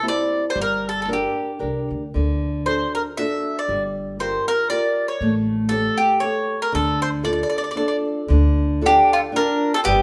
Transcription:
0.03 nylon-string guitar C4 E4 G4
0.08 mandolin D5
0.50 mandolin C5
0.55 upright bass G1, nylon-string guitar G3
0.61 mandolin A#4
0.89 mandolin A4
1.02 mandolin A4
1.08 nylon-string guitar D4 G4 A#4
1.13 mandolin G4
1.59 upright bass C2, nylon-string guitar D4 G4 A#4
1.91 upright bass D2
2.14 upright bass D2, nylon-string guitar D3
2.66 nylon-string guitar D4 F#4 A4, mandolin C5
2.95 mandolin A#4
3.17 nylon-string guitar D4 F#4 A4, mandolin E5
3.59 mandolin D5
3.68 upright bass G1, nylon-string guitar G3
4.19 nylon-string guitar F4 G4 A#4, mandolin C5
4.48 mandolin A#4
4.69 nylon-string guitar F4 G4 A#4, mandolin D5
5.08 mandolin C#5
5.21 upright bass A1, nylon-string guitar A3
5.69 nylon-string guitar G4 A4 C#5, mandolin A4
5.98 mandolin G4
6.20 nylon-string guitar G4 A4 C#5, mandolin C#5
6.62 mandolin A#4
6.72 upright bass D2, nylon-string guitar D3, mandolin A4
7.02 mandolin C5
7.23 nylon-string guitar D4 F4 A4, mandolin D5
7.33 mandolin D5
7.43 mandolin D5
7.50 mandolin D5
7.58 mandolin D5
7.64 mandolin D5
7.71 mandolin D5
7.75 nylon-string guitar D4 F4 A4, mandolin D5
7.88 mandolin D5
8.28 upright bass D2, nylon-string guitar D3
8.81 nylon-string guitar D4 F4 A4
8.86 mandolin D4 G4
9.13 mandolin A3 F4
9.32 nylon-string guitar D4 F4
9.36 mandolin D4 A#4
9.74 mandolin C4 A4
9.84 upright bass G1, nylon-string guitar G3, mandolin B3 G4

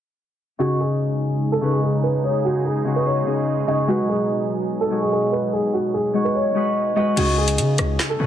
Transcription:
0.59 harp C#3 C#4 D#4 G#4, analog synth pad C#3 G#3 D#4 G#4, grand piano F#4
0.80 grand piano G#4
1.52 grand piano A4
1.61 harp C#3 C#4 D#4 B4
1.73 grand piano G#4
1.83 grand piano G#4
2.03 grand piano B4
2.24 grand piano C#5
2.45 grand piano F#4
2.65 grand piano G#4
2.85 harp C#3 C#4 D#4 F#4
2.96 grand piano B4
3.06 grand piano C#5
3.26 harp C#3 C#4 D#4 G#4
3.67 harp C#3 C#4 D#4 G#4, grand piano D#5
3.87 analog synth pad B2 F#3, harp G#3 D#4 F#4 B4, grand piano F#4
4.09 grand piano G#4
4.81 grand piano A4
4.90 harp G#3 D#4 F#4 G#4
5.02 grand piano G#4
5.12 grand piano G#4
5.32 grand piano B4
5.53 grand piano G#4
5.73 grand piano F#4
5.94 grand piano G#4
6.13 harp G#3 D#4 F#4 C#5
6.25 grand piano B4
6.35 grand piano C#5
6.54 harp G#3 D#4 F#4 B4
6.96 harp G#3 D#4 F#4 B4, grand piano D#5
7.16 808-style bass C#2, harp C#3 C#4 D#4 G#4, grand piano F#4, closed hi-hat, crash
7.38 grand piano G#4
7.48 closed hi-hat
7.58 808-style bass C#3, closed hi-hat
7.78 808-style bass C#2, cross-stick, closed hi-hat
7.99 snare, clap
8.10 grand piano A4
8.19 808-style bass G#2, harp C#3 C#4 D#4 B4

